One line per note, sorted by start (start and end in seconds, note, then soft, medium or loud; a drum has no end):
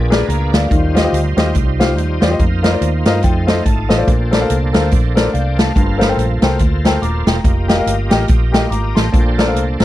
0.00 0.23 A#1 medium
0.00 0.49 A#2 medium
0.00 0.68 A#3 medium
0.00 0.71 D4 medium
0.00 0.69 G#4 medium
0.00 0.69 B4 medium
0.10 0.23 G#4 medium
0.10 0.23 A#4 medium
0.10 0.24 B4 medium
0.10 0.24 D5 medium
0.10 0.27 G#5 medium
0.10 snare loud
0.10 closed hi-hat medium
0.28 0.50 C#2 medium
0.28 0.51 F5 medium
0.28 0.52 A#5 medium
0.28 closed hi-hat medium
0.52 0.68 D2 medium
0.52 0.69 D5 medium
0.52 0.94 D5 medium
0.52 0.94 F5 medium
0.52 snare loud
0.52 closed hi-hat medium
0.68 1.07 D#2 medium
0.68 1.33 D#3 medium
0.68 2.35 G3 medium
0.68 2.35 D#4 medium
0.68 2.35 F4 medium
0.68 0.75 A#4 medium
0.68 kick loud
0.68 closed hi-hat medium
0.74 2.37 C5 medium
0.95 1.01 F4 medium
0.95 1.01 G4 medium
0.95 1.02 C5 medium
0.95 1.02 D#5 medium
0.95 snare medium
0.95 closed hi-hat medium
1.03 1.18 F4 medium
1.03 1.18 G4 medium
1.03 1.18 C5 medium
1.03 1.18 D#5 medium
1.13 1.34 D2 medium
1.13 closed hi-hat loud
1.37 1.52 D#2 medium
1.37 1.50 F4 medium
1.37 1.50 G4 medium
1.37 1.50 C5 medium
1.37 1.50 D#5 medium
1.37 snare loud
1.37 closed hi-hat medium
1.55 1.97 C2 medium
1.55 kick loud
1.55 closed hi-hat medium
1.79 1.92 F4 medium
1.79 1.92 G4 medium
1.79 1.92 C5 medium
1.79 1.93 F5 medium
1.79 snare loud
1.79 closed hi-hat medium
1.97 2.18 D#2 medium
1.97 closed hi-hat medium
2.21 2.37 E2 medium
2.21 2.28 F4 medium
2.21 2.28 G4 medium
2.21 2.28 C5 medium
2.21 2.29 D5 medium
2.21 snare loud
2.21 closed hi-hat medium
2.30 2.39 F4 medium
2.30 2.39 G4 medium
2.30 2.40 C5 medium
2.30 2.40 D#5 medium
2.39 2.75 F2 medium
2.39 3.22 A#3 medium
2.39 3.22 D#4 medium
2.39 3.22 F4 medium
2.39 3.22 C5 medium
2.39 kick medium
2.39 closed hi-hat medium
2.63 2.70 F4 medium
2.63 2.70 A#4 medium
2.63 2.70 C5 medium
2.63 2.70 D#5 medium
2.63 snare medium
2.63 closed hi-hat medium
2.72 2.86 F4 medium
2.72 2.87 C5 medium
2.72 2.87 D5 medium
2.81 3.02 D#2 medium
2.81 closed hi-hat loud
3.05 3.21 G2 medium
3.05 3.18 F4 medium
3.05 3.18 A#4 medium
3.05 3.19 C5 medium
3.05 3.19 D#5 medium
3.05 3.23 F5 medium
3.05 snare loud
3.05 closed hi-hat medium
3.22 3.60 F2 medium
3.22 4.06 A3 medium
3.22 4.06 D#4 medium
3.22 4.06 F4 medium
3.22 3.46 C5 medium
3.22 3.63 G5 medium
3.22 kick loud
3.22 closed hi-hat medium
3.47 3.60 F4 medium
3.47 3.60 A4 medium
3.47 3.64 C5 medium
3.47 3.61 C5 medium
3.47 3.61 D#5 medium
3.47 snare loud
3.47 closed hi-hat medium
3.64 3.86 G#1 medium
3.64 4.04 A5 medium
3.64 4.05 A5 medium
3.64 kick medium
3.64 closed hi-hat medium
3.89 4.05 A1 medium
3.89 3.95 F4 medium
3.89 3.96 A4 medium
3.89 3.96 C5 medium
3.89 3.96 D#5 medium
3.89 snare loud
3.89 closed hi-hat medium
3.97 4.07 F4 medium
3.97 4.07 A4 medium
3.97 4.07 C5 medium
3.97 4.07 D5 medium
4.07 4.43 A#1 medium
4.07 4.70 A#2 medium
4.07 5.73 A#3 medium
4.07 5.72 D4 medium
4.07 5.73 A4 medium
4.07 5.73 C5 medium
4.07 kick loud
4.07 closed hi-hat medium
4.31 4.38 A4 medium
4.31 4.38 A#4 medium
4.31 4.39 C5 medium
4.31 4.39 D5 medium
4.31 snare medium
4.31 closed hi-hat medium
4.40 4.55 A4 medium
4.40 4.55 A#4 medium
4.40 4.55 C5 medium
4.40 4.55 F5 medium
4.50 4.71 C2 medium
4.50 closed hi-hat loud
4.73 4.90 D2 medium
4.73 4.86 A4 medium
4.73 4.87 A#4 medium
4.73 4.87 C5 medium
4.73 4.87 F5 medium
4.73 snare loud
4.73 closed hi-hat medium
4.91 5.28 A#1 medium
4.91 kick loud
4.91 closed hi-hat medium
5.15 5.29 A4 medium
5.15 5.29 A#4 medium
5.15 5.29 C5 medium
5.15 5.29 D5 medium
5.15 snare loud
5.15 closed hi-hat medium
5.33 5.70 C2 medium
5.33 5.57 F5 medium
5.33 5.57 G5 medium
5.33 closed hi-hat medium
5.56 5.98 F5 medium
5.56 5.98 A5 medium
5.56 snare loud
5.56 closed hi-hat medium
5.75 6.12 G1 medium
5.75 6.39 G2 medium
5.75 7.41 A#3 medium
5.75 7.41 F4 medium
5.75 7.41 A4 medium
5.75 7.41 C5 medium
5.75 kick medium
5.75 closed hi-hat medium
5.98 6.06 A4 medium
5.98 6.06 A#4 medium
5.98 6.06 C5 medium
5.98 6.06 F5 medium
5.98 snare medium
5.98 closed hi-hat medium
6.08 6.23 A4 medium
6.08 6.23 A#4 medium
6.08 6.23 C5 medium
6.08 6.23 G5 medium
6.17 6.39 A#1 medium
6.17 closed hi-hat loud
6.42 6.57 C2 medium
6.42 6.55 A4 medium
6.42 6.55 A#4 medium
6.42 6.56 C5 medium
6.42 6.56 G5 medium
6.42 snare loud
6.42 closed hi-hat medium
6.59 6.96 D2 medium
6.59 kick medium
6.59 closed hi-hat medium
6.85 6.97 A4 medium
6.85 6.98 A#4 medium
6.85 6.98 C5 medium
6.85 6.98 G5 medium
6.85 snare loud
6.85 closed hi-hat medium
7.02 7.23 D#1 medium
7.02 7.25 A#5 medium
7.02 7.26 D6 medium
7.02 closed hi-hat medium
7.27 7.42 E1 medium
7.27 7.67 G5 medium
7.27 7.67 A#5 medium
7.27 snare loud
7.27 closed hi-hat medium
7.44 7.80 F1 medium
7.44 9.10 A#3 medium
7.44 9.10 F4 medium
7.44 9.10 G4 medium
7.44 9.10 D#5 medium
7.44 kick loud
7.44 closed hi-hat medium
7.68 7.75 G4 medium
7.68 7.76 A#4 medium
7.68 7.76 D#5 medium
7.68 7.76 F5 medium
7.68 snare medium
7.68 closed hi-hat medium
7.77 7.92 G4 medium
7.77 7.92 A#4 medium
7.77 7.92 D#5 medium
7.77 7.92 F5 medium
7.86 8.08 G1 medium
7.86 closed hi-hat loud
8.10 8.26 A1 medium
8.10 8.23 G4 medium
8.10 8.24 A#4 medium
8.10 8.24 D#5 medium
8.10 8.24 G5 medium
8.10 snare loud
8.10 closed hi-hat medium
8.28 8.65 A#1 medium
8.28 kick loud
8.28 closed hi-hat medium
8.52 8.65 G4 medium
8.52 8.66 A#4 medium
8.52 8.66 D#5 medium
8.52 8.66 G5 medium
8.52 snare loud
8.52 closed hi-hat medium
8.70 8.92 G#1 medium
8.70 8.94 A#5 medium
8.70 8.95 A#5 medium
8.70 8.94 D6 medium
8.70 closed hi-hat medium
8.95 9.11 A1 medium
8.95 9.36 G5 medium
8.95 9.36 A5 medium
8.95 9.35 C6 medium
8.95 snare loud
8.95 closed hi-hat medium
9.12 9.56 A#1 medium
9.12 9.76 A#2 medium
9.12 9.85 A#3 medium
9.12 9.85 D4 medium
9.12 9.85 A4 medium
9.12 9.85 C5 medium
9.12 kick loud
9.12 closed hi-hat medium
9.38 9.44 A4 medium
9.38 9.44 A#4 medium
9.38 9.45 C5 medium
9.38 9.45 D5 medium
9.38 snare loud
9.38 closed hi-hat medium
9.46 9.61 A4 medium
9.46 9.61 A#4 medium
9.46 9.61 C5 medium
9.46 9.62 F5 medium
9.56 9.77 C2 medium
9.56 closed hi-hat loud
9.80 9.85 A#1 medium
9.80 9.85 A4 medium
9.80 9.85 A#4 medium
9.80 9.85 C5 medium
9.80 snare loud
9.80 closed hi-hat medium